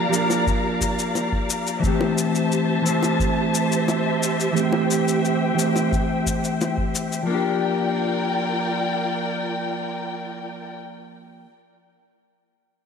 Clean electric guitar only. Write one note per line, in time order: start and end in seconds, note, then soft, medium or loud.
0.00 0.11 G4 loud
0.09 1.77 F3 medium
0.09 1.79 A#3 medium
0.14 1.80 D4 medium
0.14 1.81 A#4 medium
1.80 2.80 E3 medium
1.80 2.81 A3 medium
1.85 2.82 C4 medium
1.85 2.83 G4 loud
2.82 4.50 E3 medium
2.82 4.51 A3 medium
2.87 4.52 C4 medium
2.87 4.54 C5 medium
4.52 5.52 E3 medium
4.52 5.54 A3 medium
4.57 5.55 C4 medium
4.57 5.56 G4 loud
5.54 7.23 E3 medium
5.54 7.22 A3 medium
5.60 7.25 C4 medium
5.60 7.27 C5 medium
7.23 11.44 F3 medium
7.23 11.46 A#3 medium
7.30 11.48 D4 medium
7.30 11.50 G4 medium